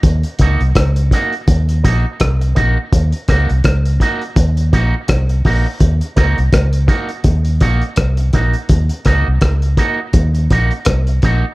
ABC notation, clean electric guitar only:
X:1
M:4/4
L:1/16
Q:"Swing 16ths" 1/4=83
K:Ebdor
V:1 name="Clean electric guitar"
z2 [B,EG] z3 [B,EG] z3 [B,EG] z3 [B,EG] z | z2 [B,EG] z3 [B,EG] z3 [B,EG] z3 [B,EG] z | z2 [B,EG] z3 [B,EG] z3 [B,EG] z3 [B,EG] z | z2 [B,EG] z3 [B,EG] z3 [B,EG] z3 [B,EG] z |]